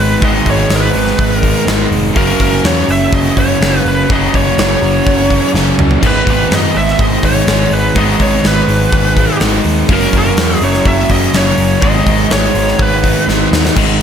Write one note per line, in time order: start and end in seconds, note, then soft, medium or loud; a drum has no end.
0.00 0.14 G#1 medium
0.00 0.19 G#2 medium
0.00 0.20 D#3 medium
0.00 0.21 D#3 medium
0.00 0.21 G#3 medium
0.00 0.22 G#3 loud
0.00 0.21 B3 medium
0.00 0.21 D#4 medium
0.00 0.24 B4 medium
0.20 0.38 G#1 medium
0.20 1.41 G#2 medium
0.20 1.41 D#3 medium
0.20 1.41 G#3 medium
0.20 1.42 B3 loud
0.20 1.41 D#4 loud
0.20 kick loud
0.24 0.48 D#5 loud
0.46 0.62 G#1 loud
0.46 kick medium
0.46 open hi-hat medium
0.50 0.73 C#5 medium
0.70 0.86 G#1 medium
0.70 snare loud
0.70 open hi-hat medium
0.75 1.36 B4 medium
0.93 1.10 G#1 medium
0.93 1.64 G#2 medium
0.93 1.66 D#3 medium
0.93 1.65 G#3 medium
0.93 open hi-hat medium
1.07 snare soft
1.18 1.51 G#1 loud
1.18 kick loud
1.18 open hi-hat medium
1.36 1.65 A#4 medium
1.42 1.65 G#2 medium
1.42 1.66 D#3 medium
1.42 1.66 G#3 medium
1.42 1.66 B3 medium
1.42 1.65 D#4 loud
1.42 kick medium
1.42 open hi-hat medium
1.66 1.83 G#1 medium
1.66 2.13 G#2 medium
1.66 2.14 D#3 medium
1.66 2.14 G#3 medium
1.66 2.15 B3 medium
1.66 2.15 D#4 medium
1.66 snare loud
1.66 open hi-hat medium
1.92 2.07 F1 medium
1.92 open hi-hat medium
2.13 2.31 F#1 loud
2.13 3.34 F#2 medium
2.13 3.34 C#3 medium
2.13 3.35 F#3 loud
2.13 3.35 A#3 loud
2.13 2.39 A#4 loud
2.13 kick loud
2.13 open hi-hat medium
2.17 3.34 C#4 medium
2.40 2.56 F#1 loud
2.40 2.65 A#4 medium
2.40 kick medium
2.40 open hi-hat medium
2.64 2.80 E2 medium
2.64 2.89 C#5 loud
2.64 snare loud
2.64 open hi-hat medium
2.87 3.04 F#1 medium
2.87 3.57 F#2 medium
2.87 3.59 C#3 medium
2.87 3.58 F#3 medium
2.87 open hi-hat medium
2.92 3.14 E5 loud
3.13 3.29 F#1 loud
3.13 3.38 D#5 medium
3.13 kick loud
3.35 3.53 F#1 medium
3.35 3.58 F#2 medium
3.35 3.59 C#3 medium
3.35 3.59 F#3 medium
3.35 3.59 A#3 medium
3.35 3.58 C#4 medium
3.35 3.87 C#5 loud
3.35 kick medium
3.35 open hi-hat medium
3.59 3.77 F#1 medium
3.59 4.07 F#2 medium
3.59 4.07 C#3 medium
3.59 4.08 F#3 medium
3.59 4.08 A#3 medium
3.59 4.09 C#4 medium
3.59 snare loud
3.59 open hi-hat medium
3.85 4.01 F#1 medium
3.85 4.11 B4 medium
3.85 open hi-hat medium
4.09 4.26 F#1 medium
4.09 5.28 F#2 loud
4.09 5.29 C#3 loud
4.09 5.29 F#3 loud
4.09 5.29 A#3 loud
4.09 5.28 C#4 loud
4.09 4.35 D#5 loud
4.09 kick loud
4.34 4.50 F#1 loud
4.34 4.59 C#5 loud
4.34 kick medium
4.34 open hi-hat medium
4.58 4.74 F#1 loud
4.58 5.51 C#5 medium
4.58 snare loud
4.58 open hi-hat medium
4.82 4.98 F#1 medium
4.82 5.52 F#2 medium
4.82 5.53 C#3 medium
4.82 5.52 F#3 loud
4.82 open hi-hat medium
5.07 5.38 F#1 loud
5.07 kick loud
5.07 open hi-hat medium
5.29 5.53 F#2 medium
5.29 5.53 C#3 medium
5.29 5.53 F#3 medium
5.29 5.52 A#3 medium
5.29 5.52 C#4 medium
5.29 kick medium
5.29 open hi-hat medium
5.54 5.70 F#1 medium
5.54 6.01 F#2 medium
5.54 6.01 C#3 medium
5.54 6.02 F#3 medium
5.54 6.02 A#3 medium
5.54 6.02 C#4 medium
5.54 snare medium
5.78 5.94 C#2 medium
5.78 mid tom loud
5.91 floor tom loud
6.01 6.19 G#1 medium
6.01 7.21 G#2 medium
6.01 7.22 D#3 medium
6.01 7.22 G#3 medium
6.01 7.22 B3 loud
6.01 7.20 D#4 loud
6.01 kick loud
6.01 crash loud
6.07 6.29 B4 loud
6.27 6.43 G#1 medium
6.27 6.51 B4 medium
6.27 kick medium
6.27 open hi-hat medium
6.51 6.67 F#2 medium
6.51 6.77 D#5 loud
6.51 snare loud
6.51 open hi-hat medium
6.74 6.91 G#1 medium
6.74 7.45 G#2 medium
6.74 7.46 D#3 medium
6.74 7.46 G#3 medium
6.74 7.01 E5 loud
6.74 open hi-hat medium
6.88 snare soft
6.99 7.15 G#1 medium
6.99 7.25 D#5 medium
6.99 kick loud
6.99 open hi-hat medium
7.22 7.39 G#1 medium
7.22 7.45 G#2 medium
7.22 7.46 D#3 medium
7.22 7.46 G#3 medium
7.22 7.46 B3 medium
7.22 7.45 D#4 medium
7.22 7.74 C#5 loud
7.22 kick medium
7.22 open hi-hat medium
7.46 7.63 G#1 loud
7.46 7.93 G#2 medium
7.46 7.93 D#3 medium
7.46 7.94 G#3 medium
7.46 7.95 B3 medium
7.46 7.95 D#4 medium
7.46 snare loud
7.46 open hi-hat medium
7.71 7.87 G#1 medium
7.71 7.97 B4 medium
7.71 open hi-hat medium
7.94 8.12 G#1 loud
7.94 9.14 G#2 loud
7.94 9.15 D#3 loud
7.94 9.15 G#3 loud
7.94 9.15 B3 medium
7.94 9.14 D#4 loud
7.94 8.21 D#5 loud
7.94 kick loud
7.94 open hi-hat medium
8.19 8.36 G#1 loud
8.19 8.46 C#5 medium
8.19 kick medium
8.19 open hi-hat medium
8.44 8.60 G#1 loud
8.44 9.38 B4 medium
8.44 snare loud
8.44 open hi-hat medium
8.68 8.84 G#1 medium
8.68 9.40 G#2 medium
8.68 9.40 D#3 medium
8.68 9.39 G#3 loud
8.68 open hi-hat medium
8.92 9.24 G#1 loud
8.92 kick loud
9.15 9.38 G#2 medium
9.15 9.39 D#3 medium
9.15 9.40 G#3 medium
9.15 9.39 B3 medium
9.15 9.39 D#4 medium
9.15 kick medium
9.15 open hi-hat medium
9.40 9.57 G#1 medium
9.40 9.87 G#2 medium
9.40 9.87 D#3 medium
9.40 9.88 G#3 medium
9.40 9.88 B3 medium
9.40 9.89 D#4 medium
9.40 snare loud
9.40 open hi-hat medium
9.64 9.81 D#2 medium
9.64 open hi-hat medium
9.88 10.05 F#1 medium
9.88 11.08 F#2 medium
9.88 11.09 C#3 medium
9.88 11.09 F#3 loud
9.88 11.08 A#3 loud
9.88 11.07 C#4 loud
9.88 kick loud
9.88 open hi-hat medium
9.93 10.16 A#4 medium
10.13 10.29 F#1 loud
10.13 kick medium
10.13 open hi-hat medium
10.18 10.66 A#4 medium
10.37 10.53 E2 loud
10.37 snare loud
10.37 open hi-hat loud
10.61 10.78 F#1 medium
10.61 11.32 F#2 medium
10.61 11.33 C#3 medium
10.61 11.32 F#3 loud
10.61 10.87 C#5 loud
10.61 open hi-hat medium
10.74 snare soft
10.85 11.02 F#1 loud
10.85 11.09 E5 medium
10.85 kick loud
10.85 open hi-hat medium
11.09 11.26 F#1 medium
11.09 11.32 F#2 medium
11.09 11.33 C#3 medium
11.09 11.33 F#3 medium
11.09 11.32 A#3 medium
11.09 11.32 C#4 loud
11.09 11.36 D#5 loud
11.09 kick medium
11.09 open hi-hat medium
11.33 11.50 F#1 medium
11.33 11.80 F#2 medium
11.33 11.81 C#3 medium
11.33 11.81 F#3 medium
11.33 11.82 A#3 medium
11.33 snare loud
11.33 open hi-hat medium
11.37 11.82 C#4 medium
11.37 11.82 C#5 medium
11.57 11.74 F#1 medium
11.57 open hi-hat medium
11.81 11.98 G#1 medium
11.81 13.02 G#2 medium
11.81 13.02 D#3 loud
11.81 13.03 G#3 loud
11.81 13.02 B3 medium
11.81 13.01 D#4 medium
11.81 12.32 D#5 loud
11.81 kick loud
11.81 open hi-hat medium
12.06 12.23 G#1 loud
12.06 kick medium
12.06 open hi-hat medium
12.30 12.47 G#1 medium
12.30 12.81 C#5 loud
12.30 snare loud
12.30 open hi-hat medium
12.55 12.71 G#1 medium
12.55 13.27 G#2 medium
12.55 13.27 D#3 medium
12.55 13.26 G#3 medium
12.55 open hi-hat medium
12.68 snare soft
12.79 13.11 G#1 medium
12.79 13.26 B4 medium
12.79 kick loud
13.03 13.25 G#2 medium
13.03 13.26 D#3 medium
13.03 13.27 G#3 medium
13.03 13.26 B3 medium
13.03 13.26 D#4 loud
13.03 kick medium
13.03 open hi-hat medium
13.26 13.44 G#1 medium
13.26 13.74 G#2 medium
13.26 13.74 D#3 medium
13.26 13.75 G#3 medium
13.26 13.75 B3 medium
13.26 13.76 D#4 medium
13.26 snare medium
13.51 13.68 D#2 medium
13.51 snare loud
13.65 snare medium
13.75 14.02 G#1 medium
13.75 14.02 G#2 medium
13.75 14.02 D#3 loud
13.75 14.02 G#3 loud
13.75 kick loud
13.75 crash loud